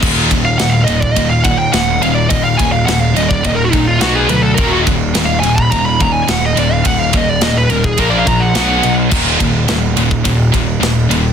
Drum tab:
CC |x---------------|----------------|----------------|----------------|
RD |--x-x-x-x-x-x-x-|x-x-x-x-x-x-x-x-|x-x-x-x-x-x-x-x-|x-x-x-x-x-x-x-x-|
SD |----o-------o---|----o-------o---|----o-------o---|----o-------o---|
BD |o-o----oo-o-----|o-o----oo-o-----|o-o----oo-o-----|o-o----oo-o-----|

CC |x---------------|
RD |--x-x-x-x-x-x-x-|
SD |----o-------o---|
BD |o-o----oo-o-----|